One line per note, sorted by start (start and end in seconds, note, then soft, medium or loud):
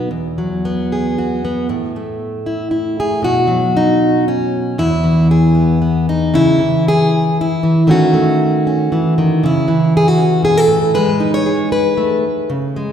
0.11 1.68 E2 medium
0.38 1.66 F#3 medium
0.65 1.43 B3 medium
0.92 1.67 G#4 medium
1.18 1.67 F#4 soft
1.45 1.67 B3 medium
1.69 3.22 A2 medium
1.96 3.21 A3 medium
2.46 2.70 E4 soft
2.71 3.20 E4 soft
3.00 3.24 G#4 medium
3.22 4.75 B2 medium
3.22 4.27 F#4 loud
3.47 4.74 F#3 medium
3.77 4.28 D#4 medium
4.28 4.79 C#4 medium
4.78 6.34 E2 medium
4.78 5.30 E4 loud
5.04 6.31 E3 medium
5.31 6.35 G#4 medium
5.55 5.80 B3 soft
5.82 6.09 B3 soft
6.09 6.35 D#4 medium
6.34 6.60 C#3 medium
6.34 6.87 E4 loud
6.59 7.62 E3 medium
6.88 7.39 G#4 loud
7.41 7.90 E4 medium
7.63 7.86 E3 medium
7.87 8.90 D#3 medium
7.87 8.12 A3 medium
7.87 8.66 C#4 medium
7.87 9.42 F#4 medium
8.13 9.38 A3 medium
8.67 9.39 C#4 soft
8.92 9.17 E3 medium
9.18 9.42 D#3 medium
9.43 9.68 C#3 medium
9.43 9.94 E4 medium
9.68 10.92 E3 medium
9.97 10.08 G#4 loud
10.08 10.44 F#4 medium
10.18 10.92 C#4 soft
10.42 10.68 B2 medium
10.42 10.58 G#4 medium
10.58 10.94 A4 medium
10.68 10.94 A2 medium
10.94 11.97 G#3 medium
10.94 11.33 B4 loud
11.20 12.47 D#4 medium
11.34 11.72 C#5 loud
11.46 12.92 G#4 soft
11.72 12.51 B4 medium
11.97 12.24 A3 medium
12.50 12.92 C#3 medium
12.76 12.92 G#3 medium